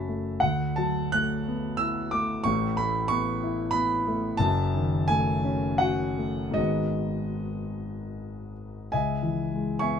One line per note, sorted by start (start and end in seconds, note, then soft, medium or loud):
0.00 0.39 F#1 medium
0.00 0.39 F#2 medium
0.00 0.45 F#3 soft
0.00 0.08 A3 medium
0.00 0.44 C#4 medium
0.00 0.28 F#4 medium
0.00 0.44 E5 medium
0.00 0.44 A5 loud
0.00 0.45 B5 medium
0.00 0.45 C#6 medium
0.08 0.43 A3 soft
0.40 2.44 D2 medium
0.40 0.77 F#5 loud
0.76 1.35 F#3 medium
0.76 1.13 A5 loud
1.12 1.68 A3 medium
1.12 1.80 F#6 loud
1.48 2.01 B3 medium
1.77 2.34 E4 medium
1.77 2.13 E6 loud
2.11 2.47 A3 medium
2.11 2.46 D6 loud
2.44 4.38 A1 medium
2.44 4.38 A2 medium
2.44 2.78 C#6 loud
2.77 3.31 A3 medium
2.77 3.11 B5 loud
3.08 3.63 B3 medium
3.08 3.75 C#6 loud
3.43 3.96 E4 medium
3.71 4.28 B3 medium
3.71 4.40 B5 loud
4.07 4.42 A3 medium
4.37 6.53 F#1 medium
4.37 6.53 F#2 medium
4.37 5.07 A5 loud
4.75 5.30 D#3 medium
5.08 5.67 A3 medium
5.08 5.81 G#5 loud
5.44 6.04 C#4 medium
5.78 6.42 F#4 medium
5.78 6.57 F#5 loud
6.18 6.58 A3 medium
6.51 8.86 G#2 medium
6.51 8.86 D#3 soft
6.51 8.87 G#3 soft
6.51 8.87 B3 medium
6.51 8.87 F#4 medium
6.51 8.51 D#5 loud
6.56 8.88 G#1 medium
8.92 10.00 C#2 medium
8.92 9.78 D#5 medium
8.92 9.78 E5 medium
8.92 9.79 G#5 medium
9.23 9.71 E3 soft
9.53 9.99 G#3 soft
9.79 10.00 B3 medium
9.79 10.00 E5 medium
9.79 10.00 G#5 medium
9.79 10.00 C#6 loud